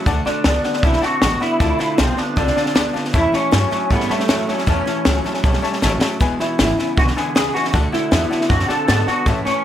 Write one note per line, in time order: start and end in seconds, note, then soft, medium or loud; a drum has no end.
0.06 0.25 D2 medium
0.06 0.25 D3 medium
0.06 0.24 D3 medium
0.06 0.26 A3 medium
0.06 0.24 A3 medium
0.06 0.26 D4 loud
0.06 0.24 F#4 medium
0.06 0.18 D5 loud
0.06 0.18 F#5 loud
0.06 0.19 A5 loud
0.06 kick loud
0.06 snare soft
0.25 0.43 D3 medium
0.25 0.43 A3 medium
0.25 0.44 A3 soft
0.25 0.85 D4 loud
0.25 0.45 D4 soft
0.25 0.45 F#4 medium
0.25 0.37 F#5 medium
0.25 muted upright bass stroke medium
0.25 snare soft
0.44 0.63 C#2 loud
0.44 0.64 D3 medium
0.44 0.62 D3 medium
0.44 0.65 A3 medium
0.44 0.63 B3 medium
0.44 0.64 D4 medium
0.44 0.63 F#4 medium
0.44 0.57 D5 medium
0.44 0.57 F#5 medium
0.44 0.57 A5 medium
0.44 snare loud
0.44 hi-hat pedal medium
0.64 0.82 D3 medium
0.64 0.83 A3 soft
0.64 0.82 B3 medium
0.64 0.84 D4 soft
0.64 0.83 F#4 soft
0.64 0.76 D5 medium
0.64 0.76 F#5 medium
0.64 0.76 A5 medium
0.64 muted upright bass stroke medium
0.64 snare soft
0.73 snare soft
0.83 1.02 B1 medium
0.83 1.01 D3 medium
0.83 1.03 D3 medium
0.83 1.03 A3 medium
0.83 1.01 C4 medium
0.83 1.03 D4 medium
0.83 1.04 E4 loud
0.83 0.95 D5 medium
0.83 0.95 F#5 medium
0.83 0.95 A5 medium
0.83 kick loud
0.83 snare soft
0.87 1.01 F#4 medium
0.93 snare soft
1.01 1.20 D3 medium
1.01 1.20 C4 medium
1.01 1.22 D4 soft
1.01 1.22 F#4 medium
1.01 1.42 F#4 loud
1.01 1.14 D5 loud
1.01 1.14 F#5 medium
1.01 1.14 A5 loud
1.01 muted upright bass stroke medium
1.01 snare soft
1.06 1.21 A3 soft
1.21 1.40 A1 medium
1.21 1.41 D3 medium
1.21 1.39 D3 medium
1.21 1.41 A3 medium
1.21 1.39 B3 loud
1.21 1.41 D4 medium
1.21 1.39 F#4 medium
1.21 1.33 D5 medium
1.21 1.33 F#5 medium
1.21 1.33 A5 loud
1.21 snare loud
1.21 hi-hat pedal loud
1.40 1.58 D3 medium
1.40 1.60 A3 soft
1.40 1.58 B3 medium
1.40 1.61 D4 medium
1.40 1.79 E4 loud
1.40 1.60 F#4 medium
1.40 1.52 D5 medium
1.40 1.52 F#5 medium
1.40 1.53 B5 medium
1.40 muted upright bass stroke medium
1.40 snare soft
1.59 1.78 D2 medium
1.59 1.79 D3 medium
1.59 1.78 D3 medium
1.59 1.80 A3 medium
1.59 1.78 A3 medium
1.59 1.79 C4 medium
1.59 1.78 F4 loud
1.59 1.71 D5 medium
1.59 1.71 F5 medium
1.59 1.72 A5 loud
1.59 kick loud
1.59 snare soft
1.78 1.97 D3 medium
1.78 1.97 A3 medium
1.78 1.98 C4 medium
1.78 1.98 E4 loud
1.78 1.98 F4 medium
1.78 1.90 D5 medium
1.78 1.91 F5 medium
1.78 1.91 A5 medium
1.78 muted upright bass stroke medium
1.78 snare soft
1.82 1.97 A3 soft
1.98 2.17 B1 loud
1.98 2.17 D3 medium
1.98 2.16 D3 medium
1.98 2.18 A3 medium
1.98 2.16 B3 medium
1.98 2.17 C4 medium
1.98 2.18 C4 medium
1.98 2.16 F4 medium
1.98 2.10 D5 medium
1.98 2.10 F5 medium
1.98 2.10 A5 medium
1.98 snare loud
1.98 hi-hat pedal medium
2.17 2.35 D3 medium
2.17 2.36 A3 soft
2.17 2.36 B3 medium
2.17 2.37 C4 soft
2.17 2.37 D4 medium
2.17 2.37 F4 medium
2.17 2.29 D5 medium
2.17 2.29 F5 medium
2.17 2.29 A5 medium
2.17 muted upright bass stroke medium
2.17 snare soft
2.36 2.56 C2 medium
2.36 2.56 D3 medium
2.36 2.54 D3 medium
2.36 2.56 A3 medium
2.36 2.55 C4 medium
2.36 2.56 C4 medium
2.36 2.91 D4 loud
2.36 2.54 F4 medium
2.36 2.48 D5 medium
2.36 2.48 F5 medium
2.36 2.49 A5 medium
2.36 kick loud
2.36 snare soft
2.47 snare soft
2.55 2.74 D3 medium
2.55 2.74 A3 soft
2.55 2.75 C4 soft
2.55 2.74 C4 medium
2.55 2.75 F4 medium
2.55 2.67 D5 loud
2.55 2.68 F5 medium
2.55 2.68 A5 loud
2.55 muted upright bass stroke medium
2.55 snare soft
2.66 snare soft
2.74 2.93 D2 loud
2.74 2.94 D3 medium
2.74 2.93 D3 loud
2.74 2.94 A3 medium
2.74 2.93 B3 loud
2.74 2.94 C4 medium
2.74 2.93 F4 medium
2.74 2.86 D5 loud
2.74 2.87 F5 medium
2.74 2.87 A5 medium
2.74 snare loud
2.74 hi-hat pedal medium
2.93 3.12 D3 medium
2.93 3.13 A3 medium
2.93 3.12 B3 medium
2.93 3.14 C4 medium
2.93 3.13 F4 medium
2.93 3.05 D5 medium
2.93 3.05 F5 medium
2.93 3.06 A5 loud
2.93 muted upright bass stroke soft
2.93 snare soft
3.05 snare soft
3.13 3.32 E2 medium
3.13 3.33 A2 medium
3.13 3.31 A2 medium
3.13 3.33 E3 medium
3.13 3.31 E3 medium
3.13 3.33 A3 medium
3.13 3.33 C#4 medium
3.13 3.34 E4 loud
3.13 3.31 E4 loud
3.13 3.25 C#5 medium
3.13 3.25 E5 medium
3.13 3.25 A5 loud
3.13 kick loud
3.13 snare soft
3.32 3.50 A2 medium
3.32 3.51 E3 medium
3.32 3.51 A3 soft
3.32 3.92 C#4 loud
3.32 3.52 C#4 medium
3.32 3.52 E4 medium
3.32 3.44 C#5 medium
3.32 3.44 E5 medium
3.32 3.45 A5 medium
3.32 muted upright bass stroke medium
3.32 snare soft
3.51 3.71 G2 loud
3.51 3.71 A2 medium
3.51 3.69 A2 medium
3.51 3.71 E3 medium
3.51 3.70 F#3 medium
3.51 3.72 A3 medium
3.51 3.72 C#4 medium
3.51 3.70 E4 medium
3.51 3.63 C#5 medium
3.51 3.64 E5 medium
3.51 3.64 A5 medium
3.51 snare loud
3.51 hi-hat pedal medium
3.70 3.89 A2 medium
3.70 3.89 F#3 medium
3.70 3.91 C#4 soft
3.70 3.90 E4 medium
3.70 3.82 C#5 medium
3.70 3.82 E5 medium
3.70 3.83 A5 medium
3.70 muted upright bass stroke medium
3.70 snare soft
3.74 3.90 A3 soft
3.89 4.09 A2 medium
3.89 4.08 A2 medium
3.89 4.09 E3 medium
3.89 4.08 G3 medium
3.89 4.10 A3 medium
3.89 4.11 B3 loud
3.89 4.09 C#4 medium
3.89 4.01 C#5 medium
3.89 4.01 E5 medium
3.89 4.02 A5 medium
3.89 kick loud
3.89 snare soft
3.93 4.08 E4 medium
4.00 snare soft
4.09 4.27 A2 medium
4.09 4.27 G3 medium
4.09 4.50 A3 medium
4.09 4.28 A3 soft
4.09 4.29 C#4 medium
4.09 4.29 E4 medium
4.09 4.21 C#5 loud
4.09 4.21 E5 loud
4.09 4.22 A5 loud
4.09 muted upright bass stroke medium
4.09 snare soft
4.20 snare soft
4.28 4.47 F#2 medium
4.28 4.48 A2 medium
4.28 4.46 A2 loud
4.28 4.48 E3 medium
4.28 4.47 F#3 medium
4.28 4.48 A3 medium
4.28 4.48 C#4 medium
4.28 4.46 E4 medium
4.28 4.40 C#5 medium
4.28 4.41 E5 medium
4.28 4.41 A5 medium
4.28 snare loud
4.28 hi-hat pedal medium
4.47 4.65 A2 medium
4.47 4.66 F#3 medium
4.47 4.66 A3 soft
4.47 4.66 C#4 medium
4.47 4.67 C#4 soft
4.47 4.67 E4 medium
4.47 4.60 C#5 medium
4.47 4.60 E5 medium
4.47 4.60 A5 medium
4.47 muted upright bass stroke soft
4.47 snare soft
4.58 snare soft
4.66 4.86 E2 medium
4.66 4.86 A2 medium
4.66 4.85 A2 medium
4.66 4.86 E3 medium
4.66 4.85 E3 medium
4.66 4.87 A3 medium
4.66 4.86 C#4 medium
4.66 5.79 C#4 medium
4.66 4.84 E4 medium
4.66 4.79 C#5 loud
4.66 4.79 E5 medium
4.66 4.80 A5 loud
4.66 kick loud
4.66 snare soft
4.86 5.04 A2 medium
4.86 5.04 E3 medium
4.86 5.05 A3 soft
4.86 5.06 C#4 soft
4.86 5.05 E4 medium
4.86 4.98 C#5 medium
4.86 4.98 E5 medium
4.86 4.99 A5 medium
4.86 muted upright bass stroke medium
4.86 snare soft
5.05 5.24 C#2 loud
5.05 5.24 A2 medium
5.05 5.23 A2 medium
5.05 5.25 E3 medium
5.05 5.23 F#3 medium
5.05 5.25 A3 medium
5.05 5.25 C#4 medium
5.05 5.23 E4 loud
5.05 5.17 C#5 medium
5.05 5.17 E5 medium
5.05 5.18 A5 medium
5.05 snare loud
5.05 hi-hat pedal medium
5.24 5.42 A2 medium
5.24 5.42 F#3 medium
5.24 5.43 A3 soft
5.24 5.44 C#4 soft
5.24 5.44 E4 medium
5.24 5.36 C#5 medium
5.24 5.37 E5 medium
5.24 5.37 A5 medium
5.24 muted upright bass stroke medium
5.24 snare soft
5.34 snare soft
5.43 5.62 B1 medium
5.43 5.61 A2 medium
5.43 5.63 E3 medium
5.43 5.61 G3 medium
5.43 5.63 A3 medium
5.43 5.63 C#4 medium
5.43 5.61 E4 medium
5.43 5.55 C#5 medium
5.43 5.55 E5 medium
5.43 5.56 A5 medium
5.43 kick loud
5.43 snare soft
5.53 snare soft
5.62 5.80 A2 medium
5.62 5.81 G3 medium
5.62 5.81 A3 medium
5.62 5.82 C#4 medium
5.62 5.82 E4 medium
5.62 5.74 C#5 loud
5.62 5.81 E5 loud
5.62 5.75 A5 loud
5.62 muted upright bass stroke medium
5.62 snare soft
5.73 snare soft
5.81 6.01 A1 medium
5.81 6.01 A2 medium
5.81 5.99 A2 medium
5.81 6.01 E3 medium
5.81 6.00 F#3 loud
5.81 6.02 A3 medium
5.81 6.01 C#4 medium
5.81 6.00 E4 loud
5.81 5.94 C#5 loud
5.81 5.94 E5 medium
5.81 5.94 A5 loud
5.81 snare medium
5.81 hi-hat pedal medium
6.01 6.19 A2 medium
6.01 6.19 F#3 medium
6.01 6.21 A3 soft
6.01 6.21 C#4 medium
6.01 6.20 E4 medium
6.01 6.13 C#5 medium
6.01 6.13 E5 medium
6.01 6.14 A5 loud
6.01 muted upright bass stroke medium
6.01 snare medium
6.20 6.38 E1 medium
6.20 6.39 E2 medium
6.20 6.38 E2 medium
6.20 6.39 B2 medium
6.20 6.38 B2 medium
6.20 6.40 E3 medium
6.20 6.40 G#3 loud
6.20 6.39 B3 medium
6.20 6.38 E4 loud
6.20 6.32 B4 loud
6.20 6.32 E5 loud
6.20 6.32 G#5 loud
6.20 kick loud
6.20 snare soft
6.39 6.57 E2 medium
6.39 6.57 B2 medium
6.39 6.58 E3 soft
6.39 6.59 G#3 soft
6.39 6.59 B3 medium
6.39 6.58 E4 soft
6.39 6.99 E4 medium
6.39 6.51 B4 medium
6.39 6.52 E5 medium
6.39 6.52 G#5 medium
6.39 muted upright bass stroke soft
6.39 snare soft
6.58 6.77 G#1 loud
6.58 6.78 E2 medium
6.58 6.76 E2 medium
6.58 6.78 B2 medium
6.58 6.76 C#3 medium
6.58 6.78 E3 medium
6.58 6.78 G#3 medium
6.58 6.77 B3 medium
6.58 6.76 E4 medium
6.58 6.70 B4 medium
6.58 6.70 E5 medium
6.58 6.71 G#5 medium
6.58 snare loud
6.58 hi-hat pedal medium
6.77 6.95 E2 medium
6.77 6.96 C#3 medium
6.77 6.95 E3 soft
6.77 6.97 G#3 soft
6.77 6.97 B3 soft
6.77 6.97 E4 medium
6.77 6.89 B4 medium
6.77 6.90 E5 medium
6.77 6.90 G#5 medium
6.77 muted upright bass stroke medium
6.77 snare soft
6.96 7.15 B1 medium
6.96 7.14 E2 medium
6.96 7.15 D3 medium
6.96 7.16 E3 medium
6.96 7.17 G#3 medium
6.96 7.16 B3 medium
6.96 7.15 E4 medium
6.96 7.03 F#4 loud
6.96 7.09 B4 medium
6.96 7.09 E5 medium
6.96 7.09 G#5 medium
6.96 kick loud
6.96 snare soft
7.07 snare soft
7.16 7.34 E2 medium
7.16 7.34 D3 medium
7.16 7.35 E3 soft
7.16 7.36 G#3 soft
7.16 7.36 B3 soft
7.16 7.35 E4 medium
7.16 7.34 G#4 medium
7.16 7.28 B4 medium
7.16 7.28 E5 medium
7.16 7.29 G#5 loud
7.16 muted upright bass stroke medium
7.16 snare soft
7.35 7.53 C#2 loud
7.35 7.54 E2 medium
7.35 7.53 E2 medium
7.35 7.55 B2 medium
7.35 7.53 C#3 loud
7.35 7.55 E3 medium
7.35 7.55 G#3 medium
7.35 7.54 B3 loud
7.35 7.53 E4 medium
7.35 7.54 G#4 loud
7.35 7.47 B4 medium
7.35 7.47 E5 medium
7.35 7.48 G#5 loud
7.35 snare loud
7.35 hi-hat pedal medium
7.54 7.72 E2 medium
7.54 7.72 C#3 loud
7.54 7.73 E3 soft
7.54 7.74 G#3 soft
7.54 7.74 B3 soft
7.54 7.74 E4 medium
7.54 7.72 F#4 loud
7.54 7.66 B4 medium
7.54 7.66 E5 medium
7.54 7.66 G#5 medium
7.54 muted upright bass stroke soft
7.54 snare soft
7.65 snare soft
7.73 7.92 D2 medium
7.73 7.92 D3 medium
7.73 7.91 D3 medium
7.73 7.93 A3 medium
7.73 7.91 A3 loud
7.73 7.93 D4 medium
7.73 7.91 F#4 medium
7.73 7.85 D5 medium
7.73 7.85 F#5 medium
7.73 7.86 A5 loud
7.73 kick loud
7.73 snare soft
7.92 8.10 D3 medium
7.92 8.10 A3 medium
7.92 8.11 A3 soft
7.92 8.12 D4 soft
7.92 8.52 E4 loud
7.92 8.12 F#4 medium
7.92 8.04 D5 medium
7.92 8.04 F#5 medium
7.92 8.04 A5 medium
7.92 muted upright bass stroke medium
7.92 snare soft
8.11 8.30 E2 loud
8.11 8.31 D3 medium
8.11 8.29 D3 medium
8.11 8.31 A3 medium
8.11 8.30 B3 medium
8.11 8.31 D4 medium
8.11 8.29 F#4 medium
8.11 8.23 D5 medium
8.11 8.23 F#5 medium
8.11 8.23 A5 medium
8.11 snare loud
8.11 hi-hat pedal medium
8.30 8.48 D3 medium
8.30 8.49 A3 soft
8.30 8.49 B3 medium
8.30 8.50 D4 soft
8.30 8.50 F#4 medium
8.30 8.42 D5 medium
8.30 8.42 F#5 medium
8.30 8.42 A5 medium
8.30 muted upright bass stroke medium
8.30 snare soft
8.41 snare soft
8.49 8.69 F#2 medium
8.49 8.69 D3 medium
8.49 8.68 D3 medium
8.49 8.69 A3 medium
8.49 8.68 C4 loud
8.49 8.69 D4 medium
8.49 8.68 F#4 loud
8.49 8.67 F#4 medium
8.49 8.61 D5 medium
8.49 8.62 F#5 medium
8.49 8.62 A5 medium
8.49 kick loud
8.49 snare soft
8.59 snare soft
8.68 8.87 D3 medium
8.68 8.88 A3 soft
8.68 8.87 C4 medium
8.68 8.88 D4 medium
8.68 8.88 F#4 medium
8.68 8.86 A4 loud
8.68 8.80 D5 loud
8.68 8.81 F#5 loud
8.68 8.81 A5 loud
8.68 muted upright bass stroke medium
8.68 snare soft
8.88 9.07 G#2 loud
8.88 9.07 D3 medium
8.88 9.06 D3 loud
8.88 9.08 A3 medium
8.88 9.06 B3 loud
8.88 9.08 D4 medium
8.88 9.06 F#4 medium
8.88 9.07 A4 loud
8.88 9.00 D5 medium
8.88 9.00 F#5 medium
8.88 9.00 A5 medium
8.88 snare loud
8.88 hi-hat pedal medium
9.07 9.25 D3 medium
9.07 9.26 A3 soft
9.07 9.25 B3 medium
9.07 9.27 D4 soft
9.07 9.26 F#4 medium
9.07 9.25 F#4 loud
9.07 9.19 D5 medium
9.07 9.19 F#5 medium
9.07 9.19 A5 medium
9.07 muted upright bass stroke medium
9.07 snare soft
9.26 9.45 A2 medium
9.26 9.44 A2 medium
9.26 9.46 E3 medium
9.26 9.44 E3 loud
9.26 9.46 A3 medium
9.26 9.45 C#4 medium
9.26 9.44 E4 medium
9.26 9.38 C#5 medium
9.26 9.38 E5 medium
9.26 9.38 A5 loud
9.26 kick loud
9.26 snare soft
9.45 9.63 A2 medium
9.45 9.64 E3 medium
9.45 9.64 A3 soft
9.45 9.64 C#4 loud
9.45 9.64 C#4 medium
9.45 9.64 E4 medium
9.45 9.57 C#5 medium
9.45 9.57 E5 medium
9.45 9.57 A5 medium
9.45 muted upright bass stroke medium
9.45 snare soft